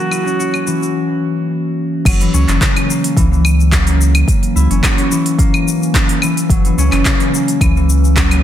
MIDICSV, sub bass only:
0, 0, Header, 1, 2, 480
1, 0, Start_track
1, 0, Tempo, 555556
1, 1776, Time_signature, 4, 2, 24, 8
1, 7286, End_track
2, 0, Start_track
2, 0, Title_t, "Sub bass"
2, 0, Program_c, 0, 38
2, 1774, Note_on_c, 0, 30, 102
2, 1972, Note_off_c, 0, 30, 0
2, 2020, Note_on_c, 0, 37, 96
2, 2120, Note_off_c, 0, 37, 0
2, 2143, Note_on_c, 0, 30, 92
2, 2235, Note_off_c, 0, 30, 0
2, 2736, Note_on_c, 0, 37, 103
2, 3662, Note_off_c, 0, 37, 0
2, 3936, Note_on_c, 0, 37, 94
2, 4038, Note_off_c, 0, 37, 0
2, 4065, Note_on_c, 0, 30, 91
2, 4156, Note_off_c, 0, 30, 0
2, 5613, Note_on_c, 0, 30, 94
2, 5812, Note_off_c, 0, 30, 0
2, 5854, Note_on_c, 0, 37, 99
2, 5957, Note_off_c, 0, 37, 0
2, 5982, Note_on_c, 0, 30, 89
2, 6074, Note_off_c, 0, 30, 0
2, 6573, Note_on_c, 0, 37, 102
2, 7286, Note_off_c, 0, 37, 0
2, 7286, End_track
0, 0, End_of_file